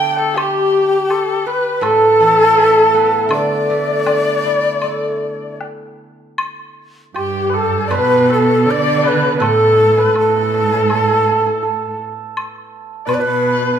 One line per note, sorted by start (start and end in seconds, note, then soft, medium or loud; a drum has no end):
0.00 1.10 D3 medium
0.00 0.22 B4 medium
0.00 1.39 D5 medium
0.00 0.86 E5 medium
0.00 0.14 G5 medium
0.00 0.39 G5 loud
0.00 1.71 G5 medium
0.00 1.50 A5 medium
0.19 0.39 A4 medium
0.34 3.48 G4 medium
0.34 1.48 G4 loud
0.34 1.12 G4 medium
0.34 high woodblock medium
1.10 1.49 A4 medium
1.10 high woodblock soft
1.47 2.94 B4 medium
1.47 1.85 B4 medium
1.47 1.83 B4 medium
1.81 3.30 A2 medium
1.81 1.90 A4 medium
1.81 3.31 A4 loud
1.81 3.33 A4 medium
1.81 high woodblock soft
1.90 1.96 A4 medium
1.96 2.05 A4 medium
2.05 2.12 A4 soft
2.12 2.19 A4 medium
2.20 3.69 E3 soft
2.20 2.26 A4 soft
2.26 2.33 A4 soft
2.33 2.41 A4 soft
2.41 2.48 A4 medium
2.49 2.54 A4 soft
2.54 3.69 A3 soft
2.54 2.63 A4 medium
2.63 2.70 A4 soft
2.71 2.77 A4 medium
2.78 5.70 A4 soft
2.94 4.44 B3 soft
2.94 5.67 B4 medium
3.25 5.59 D3 medium
3.25 5.55 E5 soft
3.31 5.60 D5 medium
3.31 5.78 D5 medium
3.31 5.57 D5 medium
3.31 high woodblock medium
3.70 5.21 A3 soft
4.06 5.61 D4 soft
4.06 high woodblock soft
4.06 low woodblock soft
4.45 6.01 E4 soft
4.82 6.40 A4 soft
4.82 high woodblock soft
5.61 low woodblock soft
6.38 high woodblock medium
7.14 7.92 G2 medium
7.14 10.28 G4 medium
7.14 7.58 G4 medium
7.14 high woodblock soft
7.18 7.51 G4 medium
7.50 8.29 A4 medium
7.50 7.55 B4 soft
7.54 7.89 A4 medium
7.54 7.86 A4 medium
7.87 9.41 B2 medium
7.87 8.67 B2 medium
7.87 9.03 B4 medium
7.87 7.97 D5 medium
7.87 7.94 D5 medium
7.91 8.34 B4 medium
7.91 high woodblock soft
7.95 8.31 B4 loud
8.30 9.40 A4 medium
8.30 8.71 A4 medium
8.30 8.73 A4 medium
8.66 9.43 D3 medium
8.66 11.13 D5 medium
8.66 9.08 D5 medium
8.71 9.10 D5 medium
9.04 9.34 B4 medium
9.04 9.36 B4 medium
9.08 9.48 B4 medium
9.34 9.97 B4 medium
9.34 9.44 B4 medium
9.40 11.61 A2 medium
9.40 10.14 A2 medium
9.40 10.15 A4 medium
9.40 10.01 A4 medium
9.40 high woodblock soft
9.46 10.17 A4 medium
9.97 12.70 B4 medium
9.97 10.19 B4 medium
10.15 11.95 A2 medium
10.15 10.20 A4 medium
10.15 12.00 A4 medium
10.15 11.96 A4 medium
10.15 high woodblock soft
10.21 10.29 A4 soft
10.30 10.36 A4 medium
10.36 10.42 A4 soft
10.43 10.50 A4 medium
10.51 10.58 A4 soft
10.58 10.67 A4 medium
10.67 10.74 A4 soft
10.74 10.81 A4 soft
10.82 10.89 A4 soft
10.90 10.96 A4 medium
10.90 high woodblock soft
10.96 11.03 A4 soft
11.04 11.09 A4 medium
11.10 11.18 A4 soft
11.19 11.26 A4 soft
11.26 11.31 A4 soft
11.31 11.40 A4 medium
11.40 11.46 A4 medium
11.46 11.62 A4 medium
11.63 13.79 A4 medium
12.37 high woodblock medium
13.05 13.20 B2 medium
13.05 13.19 B4 medium
13.05 13.21 B4 medium
13.05 13.16 B4 medium
13.05 13.09 D5 medium
13.05 high woodblock soft
13.15 13.24 D5 medium
13.20 13.79 B2 medium
13.20 13.72 B4 medium
13.20 13.79 B4 medium
13.73 13.79 B4 medium